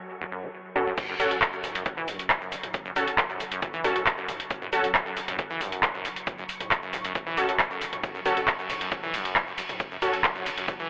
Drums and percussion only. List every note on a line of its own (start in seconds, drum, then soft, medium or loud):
0.98 kick loud
0.98 closed hi-hat medium
0.98 mid tom medium
0.98 crash loud
0.98 shaker soft
1.09 shaker soft
1.20 open hi-hat loud
1.20 shaker medium
1.31 closed hi-hat medium
1.31 mid tom medium
1.31 shaker soft
1.42 kick loud
1.42 clap loud
1.42 closed hi-hat medium
1.42 shaker soft
1.53 shaker soft
1.64 mid tom medium
1.64 open hi-hat loud
1.64 shaker medium
1.75 closed hi-hat medium
1.75 shaker soft
1.86 kick loud
1.86 closed hi-hat medium
1.86 shaker soft
1.97 mid tom medium
1.97 shaker soft
2.08 open hi-hat loud
2.08 shaker medium
2.19 closed hi-hat medium
2.19 shaker soft
2.30 kick loud
2.30 clap loud
2.30 closed hi-hat medium
2.30 mid tom medium
2.30 shaker soft
2.41 shaker soft
2.52 open hi-hat loud
2.52 shaker medium
2.63 closed hi-hat medium
2.63 mid tom medium
2.63 shaker soft
2.74 kick loud
2.74 closed hi-hat medium
2.74 shaker soft
2.86 shaker soft
2.96 mid tom medium
2.96 open hi-hat loud
2.96 shaker medium
3.08 closed hi-hat medium
3.08 shaker soft
3.18 kick loud
3.18 clap loud
3.18 closed hi-hat medium
3.18 shaker soft
3.30 mid tom medium
3.30 shaker soft
3.40 open hi-hat loud
3.40 shaker medium
3.52 closed hi-hat medium
3.52 shaker soft
3.62 kick loud
3.62 closed hi-hat medium
3.62 mid tom medium
3.62 shaker soft
3.74 shaker soft
3.84 open hi-hat loud
3.84 shaker medium
3.96 closed hi-hat medium
3.96 mid tom medium
3.96 shaker soft
4.06 kick loud
4.06 clap loud
4.06 closed hi-hat medium
4.06 shaker soft
4.18 shaker soft
4.28 mid tom medium
4.28 open hi-hat loud
4.28 shaker medium
4.40 closed hi-hat medium
4.40 shaker soft
4.51 kick loud
4.51 closed hi-hat medium
4.51 shaker soft
4.62 mid tom medium
4.62 shaker soft
4.73 open hi-hat loud
4.73 shaker medium
4.84 closed hi-hat medium
4.84 shaker soft
4.95 kick loud
4.95 clap loud
4.95 closed hi-hat medium
4.95 mid tom medium
4.95 shaker soft
5.06 shaker soft
5.17 open hi-hat loud
5.17 shaker medium
5.28 closed hi-hat medium
5.28 mid tom medium
5.28 shaker soft
5.39 kick loud
5.39 closed hi-hat medium
5.39 shaker soft
5.50 shaker soft
5.61 mid tom medium
5.61 open hi-hat loud
5.61 shaker medium
5.72 closed hi-hat medium
5.72 shaker soft
5.83 kick loud
5.83 clap loud
5.83 closed hi-hat medium
5.83 shaker soft
5.94 mid tom medium
5.94 shaker soft
6.05 open hi-hat loud
6.05 shaker medium
6.16 closed hi-hat medium
6.16 shaker soft
6.27 kick loud
6.27 closed hi-hat medium
6.27 mid tom medium
6.27 shaker soft
6.38 shaker soft
6.49 open hi-hat loud
6.49 shaker medium
6.61 closed hi-hat medium
6.61 mid tom medium
6.61 shaker soft
6.71 kick loud
6.71 clap loud
6.71 closed hi-hat medium
6.71 shaker soft
6.83 shaker soft
6.93 mid tom medium
6.93 open hi-hat medium
6.93 shaker medium
7.05 closed hi-hat medium
7.05 shaker soft
7.15 kick loud
7.15 closed hi-hat medium
7.15 shaker soft
7.27 mid tom medium
7.27 shaker soft
7.37 open hi-hat loud
7.37 shaker medium
7.49 closed hi-hat medium
7.49 shaker soft
7.59 kick loud
7.59 clap loud
7.59 closed hi-hat medium
7.59 mid tom medium
7.59 shaker soft
7.71 shaker soft
7.81 open hi-hat loud
7.81 shaker medium
7.93 closed hi-hat medium
7.93 mid tom medium
7.93 shaker soft
8.04 kick loud
8.04 closed hi-hat medium
8.04 mid tom medium
8.04 ride medium
8.04 shaker soft
8.15 shaker soft
8.26 open hi-hat loud
8.26 ride medium
8.26 shaker medium
8.37 closed hi-hat medium
8.37 mid tom medium
8.37 shaker soft
8.48 kick loud
8.48 clap loud
8.48 closed hi-hat medium
8.48 ride medium
8.48 shaker soft
8.59 shaker soft
8.70 mid tom medium
8.70 open hi-hat medium
8.70 ride medium
8.70 shaker medium
8.81 closed hi-hat medium
8.81 shaker soft
8.92 kick loud
8.92 closed hi-hat medium
8.92 ride medium
8.92 shaker soft
9.03 mid tom medium
9.03 shaker soft
9.14 open hi-hat loud
9.14 ride medium
9.14 shaker medium
9.25 closed hi-hat medium
9.25 shaker soft
9.36 kick loud
9.36 clap loud
9.36 closed hi-hat medium
9.36 mid tom medium
9.36 shaker soft
9.47 shaker soft
9.58 open hi-hat loud
9.58 ride medium
9.58 shaker medium
9.69 closed hi-hat medium
9.69 mid tom medium
9.69 shaker soft
9.80 kick loud
9.80 closed hi-hat medium
9.80 ride medium
9.80 shaker soft
9.91 shaker soft
10.02 mid tom medium
10.02 open hi-hat loud
10.02 ride medium
10.02 shaker medium
10.13 closed hi-hat medium
10.13 shaker soft
10.24 kick loud
10.24 clap loud
10.24 closed hi-hat medium
10.24 shaker soft
10.36 mid tom medium
10.36 shaker soft
10.46 open hi-hat medium
10.46 ride medium
10.46 shaker medium
10.58 closed hi-hat medium
10.58 shaker soft
10.68 kick loud
10.68 closed hi-hat medium
10.68 mid tom medium
10.68 ride medium
10.68 shaker soft
10.80 shaker soft